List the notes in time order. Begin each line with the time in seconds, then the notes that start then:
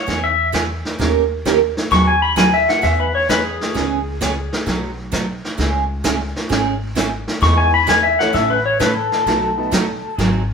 Already playing: C#5
0.07 E2 E3 B3 D#4 G#4, brush sweep, kick, snare
0.24 E5
0.52 E3 B3 D#4 G#4, kick, snare, hi-hat pedal
0.85 snare
0.99 D#2 D#3 A#3 C#4 G4 A#4, brush sweep, kick, snare
1.45 D#3 A#3 C#4 G4 A#4, kick, snare, hi-hat pedal
1.77 snare
1.91 D#2 D#3 F#3 B3 D#4 G#4 C#6, brush sweep, kick, snare
2.07 G#5
2.22 B5
2.36 D#3 F#3 B3 D#4 G#4 G#5, kick, snare, hi-hat pedal
2.54 E5
2.69 F#5, snare
2.82 E2 E3 B3 D#4 G#4 E5, brush sweep, kick, snare
3.00 B4
3.15 C#5
3.29 E3 B3 D#4 G#4 B4, kick, snare, hi-hat pedal
3.44 G#4
3.61 snare
3.74 C#2 C#3 E3 B3 C#4 G#4, brush sweep, kick, snare
4.21 C#3 E3 B3 C#4 G#4, kick, snare, hi-hat pedal
4.53 snare
4.66 B1 B2 F#3 A3 D#4 F#4, brush sweep, kick, snare
5.12 B2 F#3 A3 D#4 F#4, kick, snare, hi-hat pedal
5.44 snare
5.58 C#2 C#3 G#3 C#4 E4 G#4, brush sweep, kick, snare
6.04 C#3 G#3 C#4 E4 G#4, kick, snare, hi-hat pedal
6.36 snare
6.49 G#1 C#3 G#3 C#4 E4 G#4, brush sweep, kick, snare
6.95 C#3 G#3 C#4 E4 G#4, kick, snare, hi-hat pedal
7.28 snare
7.41 E2 E3 G#3 B3 D#4 E4 G#4 C#6, brush sweep, kick, snare
7.57 G#5
7.74 B5
7.87 E3 B3 D#4 G#4 G#5, kick, snare, hi-hat pedal
8.03 E5
8.19 E3 A3 C#4 E4 A4 F#5, snare
8.33 A1 C#3 E3 A3 C#4 A4 E5, brush sweep, kick, snare
8.50 B4
8.66 C#5
8.79 C#3 E3 A3 C#4 A4 B4, kick, snare, hi-hat pedal
8.95 A4
9.12 snare
9.26 B1 B2 F#3 A3 D#4 F#4, brush sweep, kick, snare
9.58 A3 B3 D#4 F#4 A4
9.71 B2 F#3 A3 D#4 F#4, kick, snare, hi-hat pedal
10.18 G#1 D#3 F#3 C4 D#4 G#4, brush sweep, kick, snare